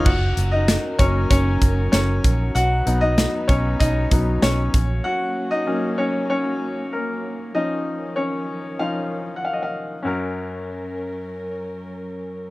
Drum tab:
CC |x-------|--------|--------|--------|
HH |-xxxxxxx|xxxxxxxx|--------|--------|
SD |--o---o-|--o---o-|--------|--------|
BD |o--ooo-o|---ooo-o|--------|--------|

CC |--------|
HH |--------|
SD |--------|
BD |--------|